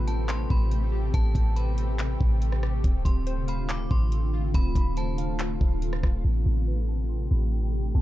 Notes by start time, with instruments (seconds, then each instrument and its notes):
Already playing: 808-style bass A1, ambient pad C3 A3 G4, synth pluck B3 B4
0.07 synth pluck G5, synth bell A5, closed hi-hat
0.28 synth bell C6, clap, closed hi-hat
0.50 808-style bass A1, synth bell B5, kick
0.71 closed hi-hat
0.92 synth pluck G4
1.14 808-style bass A1, synth pluck B3, synth bell A5, kick, closed hi-hat
1.35 808-style bass A1, kick, closed hi-hat
1.56 synth pluck B4, synth bell B5, closed hi-hat
1.78 synth pluck G5, closed hi-hat
1.99 clap, closed hi-hat
2.21 808-style bass A1, kick
2.42 closed hi-hat
2.52 cross-stick
2.63 synth pluck G4, cross-stick
2.84 808-style bass D1, ambient pad D3 A3 F4, synth pluck C4, kick, closed hi-hat
3.05 808-style bass D1, synth bell C6, kick, closed hi-hat
3.27 synth pluck C5, closed hi-hat
3.48 synth pluck F5, synth bell B5, closed hi-hat
3.69 synth bell D6, clap, closed hi-hat
3.91 808-style bass A1, synth bell C6, kick
4.12 closed hi-hat
4.34 synth pluck F4
4.54 808-style bass D1, synth pluck C4, synth bell B5, kick, closed hi-hat
4.75 808-style bass D1, kick, closed hi-hat
4.97 synth pluck C5, synth bell A5, closed hi-hat
5.18 synth pluck F5, closed hi-hat
5.39 clap, closed hi-hat
5.61 808-style bass D1, kick
5.82 closed hi-hat
5.93 cross-stick
6.03 808-style bass D1, synth pluck F4, kick, cross-stick
6.25 808-style bass A1, ambient pad C3 A3 G4, synth pluck B3
6.46 808-style bass A1, synth bell B5
6.68 synth pluck B4
6.88 synth pluck G5, synth bell A5
7.09 synth bell C6
7.31 808-style bass A1, synth bell B5
7.73 synth pluck G4
7.95 808-style bass A1, synth pluck B3, synth bell A5